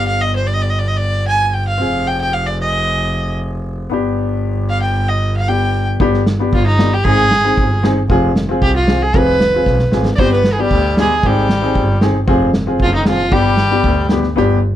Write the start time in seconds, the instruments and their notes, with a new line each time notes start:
Already playing: double bass G1, upright piano B3 D4 G4
0.08 violin F5
0.22 violin D#5
0.36 violin C5
0.47 violin D5
0.54 violin D#5
0.62 violin D5
0.70 violin D#5
0.79 violin D5
0.88 violin D#5
0.97 violin D5
1.28 violin G#5
1.50 violin G5 G#5
1.68 violin F5
1.78 double bass F1, upright piano C4 F4 G#4
2.07 violin G5
2.21 violin G5
2.33 violin F5
2.47 violin D5
2.62 violin D#5
3.90 double bass G1, upright piano B3 D4 G4
4.69 violin F5
4.82 violin G5
5.09 violin D#5
5.37 violin F5
5.48 upright piano B3 D4 G4, violin G5
6.00 double bass G1, upright piano B3 D4 G4, kick
6.14 snare
6.26 snare
6.39 upright piano B3 D4 G4
6.52 double bass G1, violin F4, kick
6.67 violin D#4
6.78 upright piano B3 D4 G4, snare
6.94 violin G4
7.04 double bass G#1, upright piano C4 D#4 G#4, violin G#4, kick
7.18 snare
7.31 snare
7.44 upright piano C4 D#4 G#4
7.57 double bass G1, kick
7.83 upright piano C4 D#4 G#4, snare
8.10 double bass F1, upright piano C4 F4 G#4, kick
8.36 snare
8.49 upright piano C4 F4 G#4
8.62 double bass C2, violin G4, kick
8.76 violin F4
8.88 upright piano C4 F4 G#4, snare
9.03 violin G#4
9.14 double bass F1, upright piano C4 F4 G#4, violin B4, kick
9.41 snare
9.54 upright piano C4 F4 G#4
9.66 double bass B1, kick, snare
9.79 snare
9.92 double bass G#1, upright piano C4 F4 G#4, snare
10.05 snare
10.16 double bass G1, upright piano B3 D4, accordion C4, violin C5 D5, kick
10.21 upright piano G4
10.32 accordion B3, violin B4
10.44 snare
10.53 violin G#4
10.58 accordion G3, upright piano B3 D4 G4, violin G4
10.71 double bass D2, kick
10.97 accordion G#3, upright piano B3 D4 G4, violin G#4, snare
11.17 accordion G#3
11.23 double bass G#1, accordion G3, upright piano C4 D#4 G#4, violin G4, kick
11.49 snare
11.62 upright piano C4 D#4 G#4
11.75 double bass G1, kick
12.01 upright piano C4 D#4 G#4, snare
12.28 double bass F1, upright piano C4 F4 G#4, kick
12.54 snare
12.67 upright piano C4 F4 G#4
12.79 double bass F#1, accordion F3, violin F4, kick
12.93 accordion D#3, violin D#4
13.05 accordion F3, upright piano C4 F4 G#4, violin F4, snare
13.19 snare
13.26 accordion G#3
13.31 double bass G1, accordion G3, upright piano B3 D4 G4, violin G4, kick
13.57 snare
13.70 upright piano B3 D4 G4
13.84 double bass D2, kick
14.09 upright piano B3 D4 G4, snare
14.23 snare
14.36 double bass G1, upright piano B3 D4 G4